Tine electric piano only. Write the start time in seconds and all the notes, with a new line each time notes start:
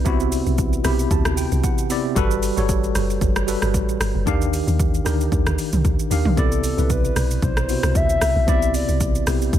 Already playing: C3 B3 D#4 E4 B4 D5
0.05 C3 B3 E4 F#4
0.83 C3 B3 E4 G4 B5
1.11 A5
1.37 G5
1.64 F#5
1.89 C3 B3 E4 D5 E5
2.15 G3 F#4 A4 B4
2.56 G3 F#4 A4 C#5
3.46 G3 F#4 A4 B4
4.26 D#3 D4 G4 F5
5.05 D#3 D4 G4 A#4
6.10 D#3 D4 G4 F5
6.36 C3 B3 E4 D5
6.77 B2 C3 E4 B4
7.68 C3 B3 E4 F#4
8.47 C3 B3 E4 D5
9.26 C3 B3 E4 G4